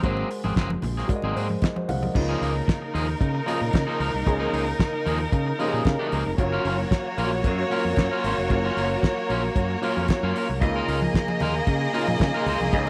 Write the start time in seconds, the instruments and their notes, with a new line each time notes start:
0.03 fingered electric bass G#1, clean electric guitar F#3 A#3 C4 G#4, grand piano G#3 F#4 A#4 C5, kick, closed hi-hat, muted conga
0.17 muted conga
0.30 muted clean electric guitar stroke, open hi-hat
0.44 fingered electric bass G#1, clean electric guitar F#3 A#3 C4 G#4, high conga
0.56 fingered electric bass F#1, clean electric guitar F#3 A#3 C4 G#4, kick, snare, clap, closed hi-hat
0.70 muted clean electric guitar stroke, muted conga, high conga
0.82 fingered electric bass A#1, muted clean electric guitar stroke, open hi-hat, low conga
0.97 clean electric guitar F#3 A#3 C4 G#4, snare
1.08 grand piano G#3 F#4 A#4 D5, muted clean electric guitar stroke, kick, closed hi-hat, muted conga
1.16 grand piano D#5
1.22 fingered electric bass G#1, clean electric guitar F#3 A#3 C4 G#4, muted conga
1.35 fingered electric bass G#2, clean electric guitar F#3 A#3 C4 G#4, grand piano C5, open hi-hat
1.49 muted clean electric guitar stroke, high conga
1.62 grand piano D#5, muted clean electric guitar stroke, kick, snare, clap, closed hi-hat
1.76 grand piano F#4 C5, muted clean electric guitar stroke, muted conga, high conga
1.88 fingered electric bass C2, grand piano C5 F5 F#5, open hi-hat, low conga
2.02 grand piano A#4 D#5, muted clean electric guitar stroke, high conga, low conga
2.14 fingered electric bass C#2, grand piano C#3 A#3 D#4 F4, violin section D#4 A#4, muted clean electric guitar stroke, kick, crash
2.29 clean electric guitar F3 A#3 D#4 G#4
2.41 fingered electric bass C#2, clean electric guitar F3 A#3 D#4 G#4, open hi-hat
2.56 muted clean electric guitar stroke
2.68 kick, snare, clap, closed hi-hat
2.82 muted clean electric guitar stroke
2.94 fingered electric bass D#2, clean electric guitar F3 A#3 D#4 G#4, open hi-hat
3.08 muted clean electric guitar stroke
3.21 fingered electric bass C#3, muted clean electric guitar stroke, kick, closed hi-hat
3.35 muted clean electric guitar stroke
3.46 grand piano C#3 A#3 D#4 F4, clean electric guitar F3 A#3 D#4 G#4, open hi-hat
3.61 fingered electric bass A#2, muted clean electric guitar stroke
3.73 fingered electric bass C#3, muted clean electric guitar stroke, kick, snare, clap, closed hi-hat
3.87 clean electric guitar F3 A#3 D#4 G#4
3.99 fingered electric bass C#2, clean electric guitar F3 A#3 D#4 A#4, open hi-hat
4.13 fingered electric bass C2, muted clean electric guitar stroke
4.26 fingered electric bass C#2, grand piano C#3 A#3 D#4 G#4, muted clean electric guitar stroke, kick, closed hi-hat
4.39 clean electric guitar F3 A#3 D#4 G#4
4.52 fingered electric bass C#2, clean electric guitar F3 A#3 D#4 G#4, open hi-hat
4.67 muted clean electric guitar stroke
4.80 kick, snare, clap, closed hi-hat
4.93 muted clean electric guitar stroke
5.06 fingered electric bass D#2, clean electric guitar F3 A#3 D#4 G#4, open hi-hat
5.20 muted clean electric guitar stroke
5.32 fingered electric bass C#3, muted clean electric guitar stroke, kick, closed hi-hat
5.46 muted clean electric guitar stroke
5.58 grand piano C#3 A#3 D#4 G4, clean electric guitar F3 A#3 D#4 G#4, open hi-hat
5.66 grand piano G#4
5.73 fingered electric bass A#2, clean electric guitar F3 A#3 D#4 G#4
5.85 fingered electric bass C#3, grand piano F5, kick, snare, clap, closed hi-hat
5.99 clean electric guitar F3 A#3 D#4 G#4
6.11 fingered electric bass C#2, clean electric guitar F3 A#3 D#4 G#4, open hi-hat
6.26 fingered electric bass F1, muted clean electric guitar stroke
6.38 fingered electric bass F#1, grand piano F#3 C#4 F4 A#4, violin section A#3 F#4 C#5, muted clean electric guitar stroke, kick, closed hi-hat
6.52 clean electric guitar A#3 C#4 F4 A#4
6.65 fingered electric bass F#1, clean electric guitar A#3 C#4 F4 A#4, open hi-hat
6.79 muted clean electric guitar stroke
6.91 kick, snare, clap, closed hi-hat
7.05 muted clean electric guitar stroke
7.18 fingered electric bass A#1, clean electric guitar A#3 C#4 F4 A#4, open hi-hat
7.32 muted clean electric guitar stroke
7.44 fingered electric bass F#2, muted clean electric guitar stroke, kick, closed hi-hat
7.58 muted clean electric guitar stroke
7.70 grand piano F#3 C#4 F4 A#4, clean electric guitar A#3 C#4 F4 A#4, open hi-hat
7.85 fingered electric bass F2, muted clean electric guitar stroke
7.96 fingered electric bass F#2, muted clean electric guitar stroke, kick, snare, clap, closed hi-hat
8.11 clean electric guitar A#3 C#4 F4 A#4
8.24 fingered electric bass G#1, clean electric guitar A#3 C#4 F4 C5, open hi-hat
8.38 fingered electric bass F1, muted clean electric guitar stroke
8.50 fingered electric bass F#1, grand piano F#3 C#4 F4 A#4, muted clean electric guitar stroke, kick, closed hi-hat
8.65 clean electric guitar A#3 C#4 F4 A#4
8.76 fingered electric bass F#1, clean electric guitar A#3 C#4 F4 A#4, open hi-hat
8.91 muted clean electric guitar stroke
9.03 kick, snare, clap, closed hi-hat
9.17 muted clean electric guitar stroke
9.29 fingered electric bass A#1, clean electric guitar A#3 C#4 F4 A#4, open hi-hat
9.44 muted clean electric guitar stroke
9.56 fingered electric bass F#2, muted clean electric guitar stroke, kick, closed hi-hat
9.70 muted clean electric guitar stroke
9.81 grand piano F#3 C#4 F4 A#4, clean electric guitar A#3 C#4 F4 A#4, open hi-hat
9.97 fingered electric bass F2, clean electric guitar A#3 C#4 F4 A#4
10.08 muted clean electric guitar stroke, kick, snare, clap, closed hi-hat
10.23 fingered electric bass F#2, clean electric guitar A#3 C#4 F4 A#4
10.36 clean electric guitar A#3 C#4 F4 A#4, open hi-hat
10.49 fingered electric bass C2, muted clean electric guitar stroke
10.60 fingered electric bass C#2, grand piano C#3 A#3 D#4 F4, violin section A#3 G#4 D#5, muted clean electric guitar stroke, kick, closed hi-hat
10.76 clean electric guitar A#3 D#4 F4 A#4
10.88 fingered electric bass C#2, clean electric guitar A#3 D#4 F4 A#4, open hi-hat
11.02 muted clean electric guitar stroke, high conga
11.14 kick, snare, clap, closed hi-hat
11.28 muted clean electric guitar stroke, high conga
11.40 fingered electric bass D#2, clean electric guitar A#3 D#4 F4 A#4, open hi-hat, low conga
11.55 muted clean electric guitar stroke
11.67 fingered electric bass C#3, muted clean electric guitar stroke, kick, closed hi-hat, muted conga
11.81 muted clean electric guitar stroke
11.93 grand piano C#3 A#3 D#4 F4, clean electric guitar A#3 D#4 F4 A#4, open hi-hat
12.07 fingered electric bass A#2, muted clean electric guitar stroke, high conga
12.19 fingered electric bass C#3, muted clean electric guitar stroke, kick, snare, clap, closed hi-hat
12.34 clean electric guitar A#3 D#4 F4 A#4, muted conga
12.46 fingered electric bass C#2, clean electric guitar A#3 D#4 F4 C5, open hi-hat, low conga
12.60 fingered electric bass C2, muted clean electric guitar stroke, high conga
12.72 fingered electric bass C#2, grand piano C#3 A#3 D#4 G#4, muted clean electric guitar stroke, kick, closed hi-hat, muted conga